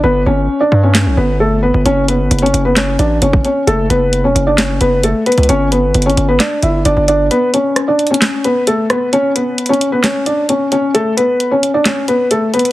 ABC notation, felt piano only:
X:1
M:4/4
L:1/16
Q:1/4=132
K:Glyd
V:1 name="Felt piano"
[B,B]2 [Cc]3 [Dd]2 [Cc]3 [B,B]2 [A,A]2 [B,B]2 | [Cc]2 [B,B]3 [Cc]2 [B,B] [Cc]2 [Dd]2 [Cc]2 [Cc]2 | [A,A]2 [B,B]3 [Cc]2 [Dd] C2 [B,B]2 [A,A]2 [B,B]2 | [Cc]2 [B,B]3 [Cc]2 [B,B] [Dd]2 [Ee]2 [Dd]2 [Dd]2 |
[B,B]2 [Cc]3 [Dd]2 [Cc]3 [B,B]2 [A,A]2 [B,B]2 | [Cc]2 [B,B]3 [Cc]2 [B,B] [Cc]2 [Dd]2 [Cc]2 [Cc]2 | [A,A]2 [B,B]3 [Cc]2 [Dd] z2 [B,B]2 [A,A]2 [B,B]2 |]